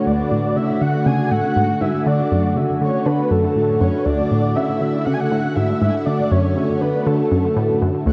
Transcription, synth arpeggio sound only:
0, 0, Header, 1, 2, 480
1, 0, Start_track
1, 0, Tempo, 500000
1, 60, Time_signature, 4, 2, 24, 8
1, 7802, End_track
2, 0, Start_track
2, 0, Title_t, "Synth arpeggio sound"
2, 0, Program_c, 0, 84
2, 62, Note_on_c, 0, 38, 81
2, 212, Note_off_c, 0, 38, 0
2, 301, Note_on_c, 0, 45, 74
2, 527, Note_off_c, 0, 45, 0
2, 539, Note_on_c, 0, 49, 73
2, 690, Note_off_c, 0, 49, 0
2, 782, Note_on_c, 0, 50, 71
2, 1007, Note_off_c, 0, 50, 0
2, 1019, Note_on_c, 0, 49, 96
2, 1246, Note_off_c, 0, 49, 0
2, 1261, Note_on_c, 0, 45, 69
2, 1351, Note_off_c, 0, 45, 0
2, 1500, Note_on_c, 0, 44, 74
2, 1651, Note_off_c, 0, 44, 0
2, 1740, Note_on_c, 0, 44, 76
2, 1831, Note_off_c, 0, 44, 0
2, 1982, Note_on_c, 0, 50, 82
2, 2132, Note_off_c, 0, 50, 0
2, 2223, Note_on_c, 0, 42, 97
2, 2447, Note_off_c, 0, 42, 0
2, 2459, Note_on_c, 0, 49, 77
2, 2610, Note_off_c, 0, 49, 0
2, 2702, Note_on_c, 0, 50, 74
2, 2791, Note_off_c, 0, 50, 0
2, 2938, Note_on_c, 0, 50, 93
2, 3090, Note_off_c, 0, 50, 0
2, 3177, Note_on_c, 0, 42, 95
2, 3329, Note_off_c, 0, 42, 0
2, 3416, Note_on_c, 0, 45, 76
2, 3644, Note_off_c, 0, 45, 0
2, 3656, Note_on_c, 0, 42, 76
2, 3749, Note_off_c, 0, 42, 0
2, 3898, Note_on_c, 0, 38, 82
2, 4050, Note_off_c, 0, 38, 0
2, 4141, Note_on_c, 0, 45, 72
2, 4367, Note_off_c, 0, 45, 0
2, 4381, Note_on_c, 0, 49, 77
2, 4531, Note_off_c, 0, 49, 0
2, 4620, Note_on_c, 0, 50, 72
2, 4846, Note_off_c, 0, 50, 0
2, 4863, Note_on_c, 0, 49, 96
2, 5088, Note_off_c, 0, 49, 0
2, 5102, Note_on_c, 0, 45, 72
2, 5192, Note_off_c, 0, 45, 0
2, 5341, Note_on_c, 0, 44, 73
2, 5491, Note_off_c, 0, 44, 0
2, 5583, Note_on_c, 0, 44, 75
2, 5672, Note_off_c, 0, 44, 0
2, 5824, Note_on_c, 0, 50, 84
2, 5973, Note_off_c, 0, 50, 0
2, 6063, Note_on_c, 0, 42, 97
2, 6288, Note_off_c, 0, 42, 0
2, 6303, Note_on_c, 0, 49, 76
2, 6452, Note_off_c, 0, 49, 0
2, 6544, Note_on_c, 0, 50, 73
2, 6632, Note_off_c, 0, 50, 0
2, 6783, Note_on_c, 0, 50, 101
2, 6932, Note_off_c, 0, 50, 0
2, 7023, Note_on_c, 0, 42, 95
2, 7172, Note_off_c, 0, 42, 0
2, 7263, Note_on_c, 0, 45, 73
2, 7488, Note_off_c, 0, 45, 0
2, 7504, Note_on_c, 0, 42, 75
2, 7593, Note_off_c, 0, 42, 0
2, 7740, Note_on_c, 0, 38, 84
2, 7802, Note_off_c, 0, 38, 0
2, 7802, End_track
0, 0, End_of_file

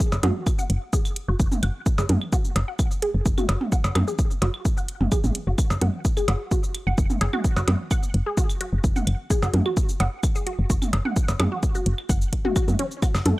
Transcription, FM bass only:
0, 0, Header, 1, 2, 480
1, 0, Start_track
1, 0, Key_signature, 3, "minor"
1, 0, Tempo, 465116
1, 1, Time_signature, 4, 2, 24, 8
1, 13823, End_track
2, 0, Start_track
2, 0, Title_t, "FM bass"
2, 0, Program_c, 0, 39
2, 126, Note_on_c, 0, 30, 96
2, 201, Note_off_c, 0, 30, 0
2, 240, Note_on_c, 0, 42, 95
2, 322, Note_off_c, 0, 42, 0
2, 720, Note_on_c, 0, 30, 97
2, 802, Note_off_c, 0, 30, 0
2, 1326, Note_on_c, 0, 30, 84
2, 1401, Note_off_c, 0, 30, 0
2, 1441, Note_on_c, 0, 30, 93
2, 1523, Note_off_c, 0, 30, 0
2, 1680, Note_on_c, 0, 30, 91
2, 1762, Note_off_c, 0, 30, 0
2, 2046, Note_on_c, 0, 30, 98
2, 2121, Note_off_c, 0, 30, 0
2, 2160, Note_on_c, 0, 42, 95
2, 2242, Note_off_c, 0, 42, 0
2, 2639, Note_on_c, 0, 30, 99
2, 2722, Note_off_c, 0, 30, 0
2, 3245, Note_on_c, 0, 30, 83
2, 3320, Note_off_c, 0, 30, 0
2, 3360, Note_on_c, 0, 30, 95
2, 3442, Note_off_c, 0, 30, 0
2, 3600, Note_on_c, 0, 30, 93
2, 3682, Note_off_c, 0, 30, 0
2, 3966, Note_on_c, 0, 30, 99
2, 4041, Note_off_c, 0, 30, 0
2, 4080, Note_on_c, 0, 42, 93
2, 4162, Note_off_c, 0, 42, 0
2, 4561, Note_on_c, 0, 30, 102
2, 4643, Note_off_c, 0, 30, 0
2, 5167, Note_on_c, 0, 30, 84
2, 5241, Note_off_c, 0, 30, 0
2, 5406, Note_on_c, 0, 33, 98
2, 5481, Note_off_c, 0, 33, 0
2, 5646, Note_on_c, 0, 30, 83
2, 5721, Note_off_c, 0, 30, 0
2, 5887, Note_on_c, 0, 30, 97
2, 5961, Note_off_c, 0, 30, 0
2, 6003, Note_on_c, 0, 42, 94
2, 6084, Note_off_c, 0, 42, 0
2, 6483, Note_on_c, 0, 30, 97
2, 6563, Note_off_c, 0, 30, 0
2, 7088, Note_on_c, 0, 30, 82
2, 7162, Note_off_c, 0, 30, 0
2, 7202, Note_on_c, 0, 30, 93
2, 7283, Note_off_c, 0, 30, 0
2, 7442, Note_on_c, 0, 30, 92
2, 7523, Note_off_c, 0, 30, 0
2, 7807, Note_on_c, 0, 30, 100
2, 7881, Note_off_c, 0, 30, 0
2, 7922, Note_on_c, 0, 42, 94
2, 8003, Note_off_c, 0, 42, 0
2, 8402, Note_on_c, 0, 30, 101
2, 8483, Note_off_c, 0, 30, 0
2, 9007, Note_on_c, 0, 30, 81
2, 9081, Note_off_c, 0, 30, 0
2, 9121, Note_on_c, 0, 30, 90
2, 9203, Note_off_c, 0, 30, 0
2, 9360, Note_on_c, 0, 30, 97
2, 9442, Note_off_c, 0, 30, 0
2, 9726, Note_on_c, 0, 30, 98
2, 9801, Note_off_c, 0, 30, 0
2, 9841, Note_on_c, 0, 42, 99
2, 9923, Note_off_c, 0, 42, 0
2, 10321, Note_on_c, 0, 30, 100
2, 10403, Note_off_c, 0, 30, 0
2, 10927, Note_on_c, 0, 30, 84
2, 11001, Note_off_c, 0, 30, 0
2, 11041, Note_on_c, 0, 30, 96
2, 11122, Note_off_c, 0, 30, 0
2, 11281, Note_on_c, 0, 30, 90
2, 11363, Note_off_c, 0, 30, 0
2, 11647, Note_on_c, 0, 30, 93
2, 11721, Note_off_c, 0, 30, 0
2, 11761, Note_on_c, 0, 42, 94
2, 11842, Note_off_c, 0, 42, 0
2, 12241, Note_on_c, 0, 30, 99
2, 12323, Note_off_c, 0, 30, 0
2, 12481, Note_on_c, 0, 30, 97
2, 12641, Note_off_c, 0, 30, 0
2, 13085, Note_on_c, 0, 42, 95
2, 13160, Note_off_c, 0, 42, 0
2, 13566, Note_on_c, 0, 30, 97
2, 13641, Note_off_c, 0, 30, 0
2, 13681, Note_on_c, 0, 42, 97
2, 13762, Note_off_c, 0, 42, 0
2, 13823, End_track
0, 0, End_of_file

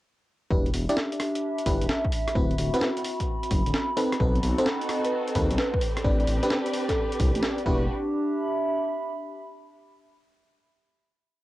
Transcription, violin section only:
0, 0, Header, 1, 2, 480
1, 0, Start_track
1, 0, Key_signature, 1, "minor"
1, 0, Tempo, 461538
1, 526, Time_signature, 4, 2, 24, 8
1, 11888, End_track
2, 0, Start_track
2, 0, Title_t, "Violin section"
2, 0, Program_c, 0, 48
2, 4364, Note_on_c, 0, 60, 76
2, 4364, Note_on_c, 0, 63, 71
2, 4364, Note_on_c, 0, 66, 71
2, 4364, Note_on_c, 0, 69, 85
2, 6028, Note_off_c, 0, 63, 0
2, 6028, Note_off_c, 0, 66, 0
2, 6029, Note_off_c, 0, 69, 0
2, 6047, Note_on_c, 0, 62, 75
2, 6047, Note_on_c, 0, 67, 73
2, 6047, Note_on_c, 0, 71, 86
2, 7930, Note_off_c, 0, 60, 0
2, 7947, Note_off_c, 0, 67, 0
2, 7948, Note_off_c, 0, 62, 0
2, 7948, Note_off_c, 0, 71, 0
2, 7966, Note_on_c, 0, 62, 72
2, 7966, Note_on_c, 0, 66, 68
2, 7966, Note_on_c, 0, 67, 67
2, 7966, Note_on_c, 0, 71, 83
2, 8190, Note_off_c, 0, 62, 0
2, 8190, Note_off_c, 0, 66, 0
2, 8190, Note_off_c, 0, 67, 0
2, 8190, Note_off_c, 0, 71, 0
2, 11888, End_track
0, 0, End_of_file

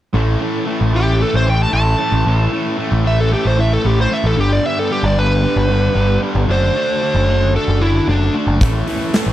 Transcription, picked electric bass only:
0, 0, Header, 1, 2, 480
1, 0, Start_track
1, 0, Tempo, 528634
1, 131, Time_signature, 4, 2, 24, 8
1, 8471, End_track
2, 0, Start_track
2, 0, Title_t, "Picked electric bass"
2, 0, Program_c, 0, 34
2, 128, Note_on_c, 0, 33, 83
2, 319, Note_off_c, 0, 33, 0
2, 734, Note_on_c, 0, 33, 86
2, 1112, Note_off_c, 0, 33, 0
2, 1217, Note_on_c, 0, 33, 83
2, 1499, Note_off_c, 0, 33, 0
2, 1572, Note_on_c, 0, 33, 78
2, 1761, Note_off_c, 0, 33, 0
2, 1927, Note_on_c, 0, 33, 80
2, 2023, Note_off_c, 0, 33, 0
2, 2051, Note_on_c, 0, 33, 86
2, 2241, Note_off_c, 0, 33, 0
2, 2650, Note_on_c, 0, 33, 86
2, 3030, Note_off_c, 0, 33, 0
2, 3135, Note_on_c, 0, 33, 85
2, 3418, Note_off_c, 0, 33, 0
2, 3494, Note_on_c, 0, 33, 88
2, 3683, Note_off_c, 0, 33, 0
2, 3849, Note_on_c, 0, 33, 89
2, 3945, Note_off_c, 0, 33, 0
2, 3970, Note_on_c, 0, 31, 85
2, 4161, Note_off_c, 0, 31, 0
2, 4568, Note_on_c, 0, 31, 84
2, 4949, Note_off_c, 0, 31, 0
2, 5051, Note_on_c, 0, 31, 90
2, 5336, Note_off_c, 0, 31, 0
2, 5406, Note_on_c, 0, 31, 81
2, 5598, Note_off_c, 0, 31, 0
2, 5766, Note_on_c, 0, 31, 88
2, 5864, Note_off_c, 0, 31, 0
2, 5886, Note_on_c, 0, 30, 82
2, 6078, Note_off_c, 0, 30, 0
2, 6488, Note_on_c, 0, 30, 83
2, 6868, Note_off_c, 0, 30, 0
2, 6972, Note_on_c, 0, 30, 85
2, 7256, Note_off_c, 0, 30, 0
2, 7334, Note_on_c, 0, 30, 79
2, 7523, Note_off_c, 0, 30, 0
2, 7691, Note_on_c, 0, 30, 82
2, 7786, Note_off_c, 0, 30, 0
2, 7818, Note_on_c, 0, 33, 81
2, 8004, Note_off_c, 0, 33, 0
2, 8412, Note_on_c, 0, 33, 82
2, 8471, Note_off_c, 0, 33, 0
2, 8471, End_track
0, 0, End_of_file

